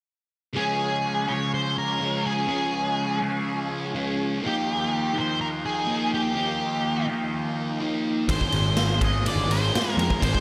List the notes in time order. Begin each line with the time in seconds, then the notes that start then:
0.53 C#3 F3 G#3 C#4 G#4
1.27 C#3 G#3 C#4 C#5
1.54 C5
1.78 A#4
2.00 C#3 G#3 C#4
2.26 G#4
2.47 C#3 G#3 C#4
3.20 C#3 G#3 C#4
3.94 C#3 G#3 C#4
4.41 D#3 F3 A#3 D#4 G5
4.46 G4
5.14 D#3 A#3 D#4
5.18 C5
5.41 A#4
5.66 G#4
5.86 D#3 A#3 D#4
6.14 G4
6.35 D#3 A#3 D#4
7.07 D#3 A#3 D#4
7.80 D#3 A#3 D#4
8.28 G#1 G#2 D#3 G#3 C4 D#4 G#4 C5, kick, ride
8.41 kick
8.52 G#1, ride
8.77 snare, ride
9.01 G#2 D#3 G#3 D#5, kick, ride
9.26 D5, ride
9.36 G1
9.49 G#1 C5, ride
9.72 G#2 D#3 G#3, snare, ride
9.97 F2 A#4, ride
10.10 kick
10.22 G#1 G#2 D#3 G#3 C5, kick, ride
10.35 kick